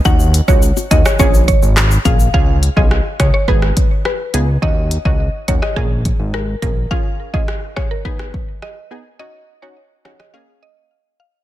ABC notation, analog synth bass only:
X:1
M:4/4
L:1/16
Q:1/4=105
K:Ebm
V:1 name="Analog synth bass" clef=bass
E,,3 D,,2 z E,, z B,,,3 A,,,3 B,,,2 | D,,3 C,,2 z D,, z A,,,2 z4 D,,2 | E,,3 D,,2 z E,, z B,,,3 A,,,3 B,,,2 | z16 |
z16 |]